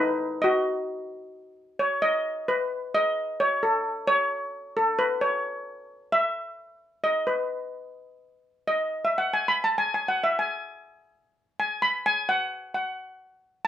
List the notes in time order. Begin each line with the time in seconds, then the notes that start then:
Already playing: D#4 B4
0.42 F#4 D#5
1.79 C#5
2.02 D#5
2.48 B4
2.95 D#5
3.40 C#5
3.63 A4
4.07 C#5
4.77 A4
4.99 B4
5.21 C#5
6.12 E5
7.04 D#5
7.27 B4
8.68 D#5
9.05 E5
9.18 F#5
9.34 G#5
9.48 B5
9.64 A5
9.78 G#5
9.94 G#5
10.08 F#5
10.24 E5
10.39 G#5
11.60 G#5
11.82 B5
12.06 G#5
12.29 F#5
12.74 F#5